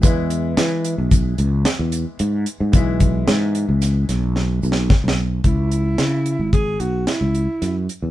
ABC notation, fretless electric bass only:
X:1
M:5/4
L:1/16
Q:1/4=111
K:C#m
V:1 name="Fretless electric bass" clef=bass
E,,4 E,3 B,,,3 C,,2 z E,,2 z G,,2 z G,, | B,,,4 G,,3 C,,3 B,,,4 B,,,2 z B,,,3 | C,,4 C,3 G,,,3 B,,,2 z C,,2 z F,,2 z E,, |]